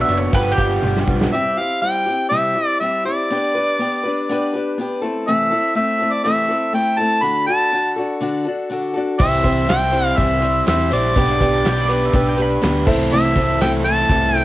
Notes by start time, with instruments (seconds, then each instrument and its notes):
Already playing: overdriven electric guitar B2 F#3 B3 D4 F#4, grand piano B4 D5 F#5
0.01 mandolin E5
0.08 picked electric bass F#1, steel-string acoustic guitar B3 D4 F#4, closed hi-hat, tambourine
0.17 mandolin C#5
0.33 picked electric bass G1, steel-string acoustic guitar G2 D3 F3 G3 B3 G4, grand piano B4 F5 G5, mandolin B4, kick, closed hi-hat, tambourine
0.52 mandolin G4
0.56 picked electric bass G1, steel-string acoustic guitar G3 B3 G4, grand piano B4 F5 G5, kick, closed hi-hat, tambourine
0.61 steel-string acoustic guitar F3
0.82 picked electric bass G1, steel-string acoustic guitar F3 G3 B3 G4, high tom, tambourine
0.97 snare
1.07 picked electric bass B1, steel-string acoustic guitar F3 G3 B3 G4, kick, tambourine
1.21 snare
1.32 steel-string acoustic guitar C3 G3 C4 E4 G4, harmonica E5
1.58 steel-string acoustic guitar C4 E4 G4, harmonica F5
1.82 steel-string acoustic guitar G3 C4 E4 G4, harmonica G5
2.06 steel-string acoustic guitar C4 E4 G4
2.29 steel-string acoustic guitar C3 G3 C4 E4 G4, harmonica E5
2.55 steel-string acoustic guitar C4 E4 G4
2.80 steel-string acoustic guitar G3 C4 E4 G4, harmonica E5
3.05 steel-string acoustic guitar C4 E4 G4, harmonica D5
3.30 steel-string acoustic guitar B3 D4 G4 B4
3.55 steel-string acoustic guitar D4 G4 B4
3.79 steel-string acoustic guitar B3 D4 G4 B4
4.03 steel-string acoustic guitar D4 G4 B4
4.29 steel-string acoustic guitar B3 D4 G4 B4
4.53 steel-string acoustic guitar D4 G4 B4
4.78 steel-string acoustic guitar B3 D4 G4 B4
5.02 steel-string acoustic guitar A3 C4 E4 A4
5.27 steel-string acoustic guitar C3 E3 A3 C4 E4 A4, harmonica E5
5.51 steel-string acoustic guitar A3 C4 E4 A4
5.75 steel-string acoustic guitar A3 C4 E4 A4, harmonica E5
5.99 steel-string acoustic guitar A3 C4 E4 A4
6.13 harmonica D5
6.24 steel-string acoustic guitar C3 E3 A3 C4 E4 A4, harmonica E5
6.49 steel-string acoustic guitar A3 C4 E4 A4
6.73 steel-string acoustic guitar A3 C4 E4 A4, harmonica G5
6.98 steel-string acoustic guitar A3 C4 E4 A4, harmonica A5
7.22 steel-string acoustic guitar D3 D4 F#4 A4, harmonica B5
7.47 steel-string acoustic guitar D4 F#4 A4, harmonica A5
7.71 steel-string acoustic guitar D3 D4 F#4 A4
7.96 steel-string acoustic guitar D4 F#4 A4
8.21 steel-string acoustic guitar D3 D4 F#4 A4
8.45 steel-string acoustic guitar D4 F#4 A4
8.70 steel-string acoustic guitar D3 D4 F#4 A4
8.94 steel-string acoustic guitar D4 F#4 A4
9.19 picked electric bass C2, steel-string acoustic guitar C3 E3 G3 C4 E4 C5, grand piano G4 C5 E5 G5, harmonica E5, kick, crash
9.32 closed hi-hat
9.44 picked electric bass C2, steel-string acoustic guitar G3 C4 E4 C5, grand piano G4 C5 E5 G5, kick, closed hi-hat, tambourine
9.56 closed hi-hat, tambourine
9.68 picked electric bass C2, overdriven electric guitar C3 E3, steel-string acoustic guitar G3 C4 E4 C5, harmonica G5, snare, closed hi-hat, tambourine
9.92 steel-string acoustic guitar G3 C4 E4 C5, closed hi-hat, tambourine
10.06 harmonica F5
10.16 picked electric bass C2, steel-string acoustic guitar C3 E3 G3 C4 E4 C5, harmonica E5, kick, closed hi-hat
10.31 tambourine
10.41 steel-string acoustic guitar G3 C4 E4 C5, closed hi-hat
10.54 closed hi-hat
10.66 picked electric bass E2, steel-string acoustic guitar G3 C4 E4 C5, harmonica E5, snare, closed hi-hat, tambourine
10.79 closed hi-hat
10.91 picked electric bass A#1, steel-string acoustic guitar G3 C4 E4 C5, harmonica D5, closed hi-hat, tambourine
11.16 picked electric bass B1, steel-string acoustic guitar B3 D4 G4 B4, grand piano G4 B4 D5 G5, kick, closed hi-hat
11.28 snare, closed hi-hat
11.40 picked electric bass B1, steel-string acoustic guitar D4 G4 B4, grand piano G4 B4 D5 G5, kick, closed hi-hat, tambourine
11.53 closed hi-hat
11.64 picked electric bass B1, steel-string acoustic guitar B3 D4 G4 B4, mandolin G4, snare, closed hi-hat, tambourine
11.81 mandolin D5
11.89 steel-string acoustic guitar D4 G4 B4, closed hi-hat, tambourine
12.03 mandolin E5, tambourine
12.13 picked electric bass B1, steel-string acoustic guitar B3 D4 G4 B4, kick, closed hi-hat
12.26 mandolin G5, closed hi-hat, tambourine
12.37 steel-string acoustic guitar D4 G4 B4, closed hi-hat
12.42 mandolin B5
12.50 closed hi-hat
12.62 picked electric bass D2, steel-string acoustic guitar B3 D4 G4 B4, snare, closed hi-hat, tambourine
12.76 tambourine
12.86 picked electric bass C2, overdriven electric guitar C3 E3, steel-string acoustic guitar C4 E4 A4, grand piano E4 A4 C5 E5, kick, tambourine, crash
12.91 steel-string acoustic guitar A3
12.99 tambourine
13.12 picked electric bass C2, steel-string acoustic guitar C3 E3 A3 C4 E4 A4, harmonica E5
13.24 closed hi-hat
13.35 picked electric bass C2, steel-string acoustic guitar C4 E4 A4, grand piano E4 A4 C5 E5, kick, closed hi-hat, tambourine
13.40 steel-string acoustic guitar A3
13.48 closed hi-hat, tambourine
13.60 picked electric bass C2, overdriven electric guitar C3 E3, steel-string acoustic guitar A3 C4 E4, harmonica G5, snare, closed hi-hat, tambourine
13.64 steel-string acoustic guitar A4
13.84 steel-string acoustic guitar A3 C4 E4 A4, harmonica A5, closed hi-hat, tambourine
13.97 tambourine
14.09 picked electric bass C2, steel-string acoustic guitar C3 E3 A3 C4 E4 A4, kick, closed hi-hat
14.21 tambourine
14.34 steel-string acoustic guitar A3 C4 E4 A4, harmonica G5, closed hi-hat